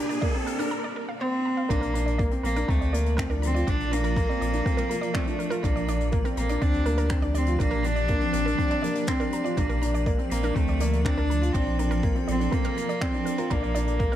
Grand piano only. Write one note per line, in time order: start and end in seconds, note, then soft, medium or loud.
0.00 0.18 D4 medium
0.22 0.32 A#3 medium
0.34 0.54 C4 medium
0.59 0.69 D4 medium
1.70 1.90 D4 medium
1.94 2.14 D4 medium
2.19 2.29 A#3 medium
2.31 2.51 C4 medium
2.56 2.66 D4 medium
2.69 2.88 C4 medium
2.93 3.13 A#3 medium
3.18 3.28 C4 medium
3.30 3.50 D4 medium
3.55 3.65 F4 medium
3.68 3.87 D4 medium
3.92 4.12 D4 medium
4.17 4.26 A#3 medium
4.29 4.48 C4 medium
4.53 4.63 D4 medium
4.66 4.85 C4 medium
4.90 5.10 A#3 medium
5.15 5.25 C4 medium
5.27 5.47 D4 medium
5.51 5.61 F4 medium
5.63 5.83 D4 medium
5.88 6.08 D4 medium
6.12 6.22 A#3 medium
6.24 6.44 C4 medium
6.50 6.60 D4 medium
6.62 6.82 C4 medium
6.86 7.06 A#3 medium
7.11 7.21 C4 medium
7.23 7.43 D4 medium
7.48 7.58 F4 medium
7.60 7.80 D4 medium
7.85 8.04 D4 medium
8.10 8.19 A#3 medium
8.22 8.42 C4 medium
8.46 8.56 D4 medium
8.59 8.78 C4 medium
8.84 9.03 A#3 medium
9.08 9.18 C4 medium
9.21 9.40 D4 medium
9.45 9.55 F4 medium
9.57 9.77 D4 medium
9.82 10.02 D4 medium
10.06 10.16 A#3 medium
10.18 10.38 C4 medium
10.43 10.53 D4 medium
10.56 10.75 C4 medium
10.80 11.00 A#3 medium
11.05 11.15 C4 medium
11.17 11.37 D4 medium
11.42 11.52 F4 medium
11.54 11.74 D4 medium
11.79 11.98 D4 medium
12.03 12.13 A#3 medium
12.15 12.35 C4 medium
12.40 12.50 D4 medium
12.52 12.72 C4 medium
12.77 12.97 A#3 medium
13.02 13.11 C4 medium
13.14 13.34 D4 medium
13.38 13.48 F4 medium
13.51 13.71 D4 medium
13.75 13.95 D4 medium
14.00 14.10 A#3 medium
14.12 14.16 C4 medium